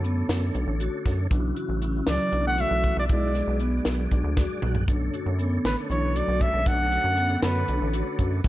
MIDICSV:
0, 0, Header, 1, 7, 480
1, 0, Start_track
1, 0, Tempo, 509771
1, 1233, Time_signature, 7, 3, 24, 8
1, 7986, End_track
2, 0, Start_track
2, 0, Title_t, "Trumpet"
2, 0, Program_c, 0, 56
2, 1966, Note_on_c, 0, 74, 82
2, 2295, Note_off_c, 0, 74, 0
2, 2327, Note_on_c, 0, 78, 96
2, 2451, Note_on_c, 0, 76, 93
2, 2465, Note_off_c, 0, 78, 0
2, 2803, Note_off_c, 0, 76, 0
2, 2816, Note_on_c, 0, 74, 75
2, 2865, Note_off_c, 0, 74, 0
2, 2941, Note_on_c, 0, 74, 76
2, 3375, Note_off_c, 0, 74, 0
2, 5325, Note_on_c, 0, 71, 75
2, 5430, Note_off_c, 0, 71, 0
2, 5562, Note_on_c, 0, 73, 81
2, 5807, Note_on_c, 0, 74, 84
2, 5821, Note_off_c, 0, 73, 0
2, 6043, Note_on_c, 0, 76, 95
2, 6057, Note_off_c, 0, 74, 0
2, 6284, Note_on_c, 0, 78, 101
2, 6298, Note_off_c, 0, 76, 0
2, 6992, Note_off_c, 0, 78, 0
2, 6997, Note_on_c, 0, 71, 70
2, 7441, Note_off_c, 0, 71, 0
2, 7986, End_track
3, 0, Start_track
3, 0, Title_t, "Vibraphone"
3, 0, Program_c, 1, 11
3, 38, Note_on_c, 1, 59, 74
3, 364, Note_off_c, 1, 59, 0
3, 512, Note_on_c, 1, 62, 74
3, 676, Note_off_c, 1, 62, 0
3, 755, Note_on_c, 1, 66, 85
3, 1082, Note_off_c, 1, 66, 0
3, 1237, Note_on_c, 1, 62, 85
3, 1399, Note_off_c, 1, 62, 0
3, 1477, Note_on_c, 1, 66, 74
3, 1639, Note_off_c, 1, 66, 0
3, 1713, Note_on_c, 1, 61, 72
3, 2041, Note_off_c, 1, 61, 0
3, 2196, Note_on_c, 1, 62, 69
3, 2359, Note_off_c, 1, 62, 0
3, 2431, Note_on_c, 1, 66, 83
3, 2759, Note_off_c, 1, 66, 0
3, 2914, Note_on_c, 1, 64, 85
3, 3078, Note_off_c, 1, 64, 0
3, 3150, Note_on_c, 1, 68, 71
3, 3315, Note_off_c, 1, 68, 0
3, 3396, Note_on_c, 1, 59, 77
3, 3723, Note_off_c, 1, 59, 0
3, 3875, Note_on_c, 1, 62, 67
3, 4038, Note_off_c, 1, 62, 0
3, 4120, Note_on_c, 1, 66, 80
3, 4445, Note_off_c, 1, 66, 0
3, 4598, Note_on_c, 1, 62, 79
3, 4760, Note_off_c, 1, 62, 0
3, 4839, Note_on_c, 1, 66, 70
3, 5001, Note_off_c, 1, 66, 0
3, 5073, Note_on_c, 1, 59, 76
3, 5401, Note_off_c, 1, 59, 0
3, 5556, Note_on_c, 1, 62, 71
3, 5718, Note_off_c, 1, 62, 0
3, 5798, Note_on_c, 1, 66, 82
3, 6123, Note_off_c, 1, 66, 0
3, 6280, Note_on_c, 1, 62, 85
3, 6441, Note_off_c, 1, 62, 0
3, 6515, Note_on_c, 1, 66, 69
3, 6678, Note_off_c, 1, 66, 0
3, 6754, Note_on_c, 1, 59, 71
3, 7080, Note_off_c, 1, 59, 0
3, 7238, Note_on_c, 1, 62, 78
3, 7399, Note_off_c, 1, 62, 0
3, 7474, Note_on_c, 1, 66, 85
3, 7800, Note_off_c, 1, 66, 0
3, 7955, Note_on_c, 1, 62, 87
3, 7986, Note_off_c, 1, 62, 0
3, 7986, End_track
4, 0, Start_track
4, 0, Title_t, "Tonewheel organ"
4, 0, Program_c, 2, 16
4, 0, Note_on_c, 2, 50, 70
4, 0, Note_on_c, 2, 57, 69
4, 0, Note_on_c, 2, 61, 73
4, 1192, Note_off_c, 2, 50, 0
4, 1197, Note_off_c, 2, 57, 0
4, 1201, Note_off_c, 2, 61, 0
4, 1225, Note_on_c, 2, 52, 73
4, 1233, Note_on_c, 2, 54, 71
4, 1246, Note_on_c, 2, 49, 84
4, 2876, Note_off_c, 2, 52, 0
4, 2880, Note_off_c, 2, 54, 0
4, 2887, Note_off_c, 2, 49, 0
4, 2901, Note_on_c, 2, 54, 59
4, 2911, Note_on_c, 2, 56, 56
4, 2924, Note_on_c, 2, 62, 67
4, 4114, Note_on_c, 2, 74, 66
4, 4337, Note_off_c, 2, 74, 0
4, 4354, Note_on_c, 2, 78, 67
4, 4553, Note_off_c, 2, 54, 0
4, 4559, Note_off_c, 2, 56, 0
4, 4565, Note_off_c, 2, 62, 0
4, 4577, Note_off_c, 2, 78, 0
4, 4597, Note_on_c, 2, 50, 73
4, 4605, Note_on_c, 2, 57, 65
4, 4611, Note_on_c, 2, 61, 84
4, 7915, Note_off_c, 2, 50, 0
4, 7919, Note_off_c, 2, 57, 0
4, 7922, Note_off_c, 2, 61, 0
4, 7947, Note_on_c, 2, 52, 75
4, 7957, Note_on_c, 2, 54, 67
4, 7986, Note_off_c, 2, 52, 0
4, 7986, Note_off_c, 2, 54, 0
4, 7986, End_track
5, 0, Start_track
5, 0, Title_t, "Clean electric guitar"
5, 0, Program_c, 3, 27
5, 1968, Note_on_c, 3, 54, 72
5, 2296, Note_off_c, 3, 54, 0
5, 2326, Note_on_c, 3, 57, 78
5, 2432, Note_off_c, 3, 57, 0
5, 2455, Note_on_c, 3, 57, 78
5, 2804, Note_off_c, 3, 57, 0
5, 2813, Note_on_c, 3, 54, 64
5, 2860, Note_off_c, 3, 54, 0
5, 2943, Note_on_c, 3, 56, 66
5, 3376, Note_off_c, 3, 56, 0
5, 5320, Note_on_c, 3, 50, 59
5, 5384, Note_off_c, 3, 50, 0
5, 5568, Note_on_c, 3, 52, 67
5, 5804, Note_off_c, 3, 52, 0
5, 5804, Note_on_c, 3, 54, 76
5, 6021, Note_off_c, 3, 54, 0
5, 6021, Note_on_c, 3, 56, 77
5, 6275, Note_off_c, 3, 56, 0
5, 6275, Note_on_c, 3, 57, 82
5, 6981, Note_off_c, 3, 57, 0
5, 6985, Note_on_c, 3, 50, 59
5, 7434, Note_off_c, 3, 50, 0
5, 7986, End_track
6, 0, Start_track
6, 0, Title_t, "Analog synth bass"
6, 0, Program_c, 4, 38
6, 0, Note_on_c, 4, 42, 87
6, 218, Note_off_c, 4, 42, 0
6, 274, Note_on_c, 4, 42, 82
6, 477, Note_off_c, 4, 42, 0
6, 515, Note_on_c, 4, 35, 85
6, 616, Note_off_c, 4, 35, 0
6, 631, Note_on_c, 4, 33, 87
6, 835, Note_off_c, 4, 33, 0
6, 996, Note_on_c, 4, 42, 81
6, 1198, Note_off_c, 4, 42, 0
6, 1233, Note_on_c, 4, 35, 96
6, 1437, Note_off_c, 4, 35, 0
6, 1590, Note_on_c, 4, 33, 83
6, 1897, Note_off_c, 4, 33, 0
6, 1951, Note_on_c, 4, 37, 90
6, 2054, Note_off_c, 4, 37, 0
6, 2188, Note_on_c, 4, 35, 81
6, 2496, Note_off_c, 4, 35, 0
6, 2549, Note_on_c, 4, 35, 84
6, 2755, Note_off_c, 4, 35, 0
6, 2794, Note_on_c, 4, 35, 86
6, 2896, Note_off_c, 4, 35, 0
6, 2913, Note_on_c, 4, 35, 105
6, 3219, Note_off_c, 4, 35, 0
6, 3270, Note_on_c, 4, 35, 97
6, 3577, Note_off_c, 4, 35, 0
6, 3630, Note_on_c, 4, 35, 83
6, 3835, Note_off_c, 4, 35, 0
6, 3876, Note_on_c, 4, 35, 82
6, 3977, Note_off_c, 4, 35, 0
6, 3992, Note_on_c, 4, 38, 88
6, 4196, Note_off_c, 4, 38, 0
6, 4354, Note_on_c, 4, 35, 82
6, 4557, Note_off_c, 4, 35, 0
6, 4593, Note_on_c, 4, 35, 96
6, 4797, Note_off_c, 4, 35, 0
6, 4953, Note_on_c, 4, 42, 83
6, 5259, Note_off_c, 4, 42, 0
6, 5318, Note_on_c, 4, 33, 95
6, 5418, Note_off_c, 4, 33, 0
6, 5554, Note_on_c, 4, 35, 85
6, 5859, Note_off_c, 4, 35, 0
6, 5912, Note_on_c, 4, 35, 82
6, 6116, Note_off_c, 4, 35, 0
6, 6153, Note_on_c, 4, 35, 83
6, 6254, Note_off_c, 4, 35, 0
6, 6274, Note_on_c, 4, 35, 101
6, 6579, Note_off_c, 4, 35, 0
6, 6630, Note_on_c, 4, 42, 93
6, 6936, Note_off_c, 4, 42, 0
6, 6993, Note_on_c, 4, 42, 88
6, 7196, Note_off_c, 4, 42, 0
6, 7238, Note_on_c, 4, 35, 84
6, 7337, Note_off_c, 4, 35, 0
6, 7358, Note_on_c, 4, 33, 90
6, 7559, Note_off_c, 4, 33, 0
6, 7711, Note_on_c, 4, 42, 85
6, 7915, Note_off_c, 4, 42, 0
6, 7952, Note_on_c, 4, 35, 91
6, 7986, Note_off_c, 4, 35, 0
6, 7986, End_track
7, 0, Start_track
7, 0, Title_t, "Drums"
7, 42, Note_on_c, 9, 42, 57
7, 136, Note_off_c, 9, 42, 0
7, 276, Note_on_c, 9, 38, 104
7, 276, Note_on_c, 9, 42, 76
7, 370, Note_off_c, 9, 38, 0
7, 370, Note_off_c, 9, 42, 0
7, 514, Note_on_c, 9, 42, 51
7, 608, Note_off_c, 9, 42, 0
7, 755, Note_on_c, 9, 42, 70
7, 849, Note_off_c, 9, 42, 0
7, 994, Note_on_c, 9, 36, 71
7, 994, Note_on_c, 9, 38, 30
7, 994, Note_on_c, 9, 42, 57
7, 1088, Note_off_c, 9, 36, 0
7, 1088, Note_off_c, 9, 38, 0
7, 1088, Note_off_c, 9, 42, 0
7, 1232, Note_on_c, 9, 42, 77
7, 1233, Note_on_c, 9, 36, 105
7, 1326, Note_off_c, 9, 42, 0
7, 1327, Note_off_c, 9, 36, 0
7, 1474, Note_on_c, 9, 42, 57
7, 1568, Note_off_c, 9, 42, 0
7, 1711, Note_on_c, 9, 42, 60
7, 1805, Note_off_c, 9, 42, 0
7, 1946, Note_on_c, 9, 38, 100
7, 1946, Note_on_c, 9, 42, 82
7, 2040, Note_off_c, 9, 38, 0
7, 2040, Note_off_c, 9, 42, 0
7, 2189, Note_on_c, 9, 42, 58
7, 2283, Note_off_c, 9, 42, 0
7, 2431, Note_on_c, 9, 42, 81
7, 2525, Note_off_c, 9, 42, 0
7, 2670, Note_on_c, 9, 42, 58
7, 2673, Note_on_c, 9, 36, 69
7, 2765, Note_off_c, 9, 42, 0
7, 2767, Note_off_c, 9, 36, 0
7, 2913, Note_on_c, 9, 42, 78
7, 2914, Note_on_c, 9, 36, 105
7, 3007, Note_off_c, 9, 42, 0
7, 3008, Note_off_c, 9, 36, 0
7, 3153, Note_on_c, 9, 38, 33
7, 3153, Note_on_c, 9, 42, 64
7, 3247, Note_off_c, 9, 38, 0
7, 3247, Note_off_c, 9, 42, 0
7, 3386, Note_on_c, 9, 42, 58
7, 3480, Note_off_c, 9, 42, 0
7, 3625, Note_on_c, 9, 38, 101
7, 3625, Note_on_c, 9, 42, 78
7, 3720, Note_off_c, 9, 38, 0
7, 3720, Note_off_c, 9, 42, 0
7, 3872, Note_on_c, 9, 42, 58
7, 3874, Note_on_c, 9, 36, 65
7, 3966, Note_off_c, 9, 42, 0
7, 3969, Note_off_c, 9, 36, 0
7, 4113, Note_on_c, 9, 38, 57
7, 4116, Note_on_c, 9, 36, 97
7, 4207, Note_off_c, 9, 38, 0
7, 4210, Note_off_c, 9, 36, 0
7, 4352, Note_on_c, 9, 45, 80
7, 4446, Note_off_c, 9, 45, 0
7, 4469, Note_on_c, 9, 43, 77
7, 4563, Note_off_c, 9, 43, 0
7, 4594, Note_on_c, 9, 42, 75
7, 4595, Note_on_c, 9, 36, 104
7, 4689, Note_off_c, 9, 42, 0
7, 4690, Note_off_c, 9, 36, 0
7, 4837, Note_on_c, 9, 42, 60
7, 4931, Note_off_c, 9, 42, 0
7, 5077, Note_on_c, 9, 42, 57
7, 5171, Note_off_c, 9, 42, 0
7, 5320, Note_on_c, 9, 38, 102
7, 5320, Note_on_c, 9, 42, 75
7, 5414, Note_off_c, 9, 38, 0
7, 5414, Note_off_c, 9, 42, 0
7, 5563, Note_on_c, 9, 42, 55
7, 5657, Note_off_c, 9, 42, 0
7, 5800, Note_on_c, 9, 42, 80
7, 5894, Note_off_c, 9, 42, 0
7, 6035, Note_on_c, 9, 36, 75
7, 6035, Note_on_c, 9, 42, 56
7, 6129, Note_off_c, 9, 36, 0
7, 6129, Note_off_c, 9, 42, 0
7, 6273, Note_on_c, 9, 36, 108
7, 6273, Note_on_c, 9, 42, 83
7, 6367, Note_off_c, 9, 42, 0
7, 6368, Note_off_c, 9, 36, 0
7, 6515, Note_on_c, 9, 42, 60
7, 6609, Note_off_c, 9, 42, 0
7, 6751, Note_on_c, 9, 42, 65
7, 6846, Note_off_c, 9, 42, 0
7, 6991, Note_on_c, 9, 38, 107
7, 6991, Note_on_c, 9, 42, 84
7, 7086, Note_off_c, 9, 38, 0
7, 7086, Note_off_c, 9, 42, 0
7, 7232, Note_on_c, 9, 42, 62
7, 7326, Note_off_c, 9, 42, 0
7, 7472, Note_on_c, 9, 42, 80
7, 7566, Note_off_c, 9, 42, 0
7, 7710, Note_on_c, 9, 36, 74
7, 7710, Note_on_c, 9, 42, 61
7, 7804, Note_off_c, 9, 42, 0
7, 7805, Note_off_c, 9, 36, 0
7, 7948, Note_on_c, 9, 42, 78
7, 7951, Note_on_c, 9, 36, 110
7, 7986, Note_off_c, 9, 36, 0
7, 7986, Note_off_c, 9, 42, 0
7, 7986, End_track
0, 0, End_of_file